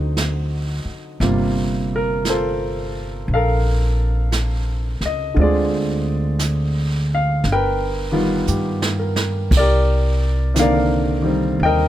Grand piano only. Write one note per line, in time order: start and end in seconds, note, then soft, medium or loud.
0.00 1.20 D3 soft
0.00 1.20 F#3 soft
0.00 1.20 C4 soft
0.00 1.21 D#4 soft
0.00 1.20 F#4 soft
0.00 1.21 C5 soft
0.00 0.16 D#5 medium
1.21 5.36 C3 soft
1.21 5.37 G3 soft
1.21 5.37 A#3 soft
1.21 2.28 F4 medium
1.96 2.25 A#4 medium
2.30 4.31 F4 soft
2.30 3.33 A4 soft
2.30 3.34 C5 medium
3.34 5.35 A4 medium
3.34 5.35 A#4 medium
3.34 4.31 F5 medium
5.06 5.36 D#5 medium
5.34 7.43 D3 soft
5.34 7.44 G#3 soft
5.34 7.45 C4 soft
5.39 5.42 F4 soft
5.39 7.43 G#4 soft
5.39 7.07 D5 medium
5.44 7.44 F4 soft
7.15 7.48 F5 medium
7.52 8.98 A#4 medium
7.52 9.52 B4 medium
7.52 8.48 G5 medium
8.12 9.51 D#3 soft
8.12 9.52 G3 soft
8.12 9.52 B3 soft
8.12 9.52 F4 medium
8.48 9.30 G4 soft
8.99 9.58 A#4 soft
9.57 11.59 G4 medium
9.57 10.60 A#4 medium
9.57 10.54 D5 medium
10.54 11.88 C3 soft
10.54 11.21 D#3 soft
10.54 11.88 A#3 soft
10.59 11.88 D3 soft
10.59 11.64 A#4 medium
10.59 11.88 D5 medium
10.59 11.64 F5 medium
11.22 11.88 D#3 soft
11.22 11.88 G3 soft
11.22 11.88 C4 soft
11.63 11.88 A#4 medium
11.63 11.88 D#5 medium
11.63 11.88 G5 medium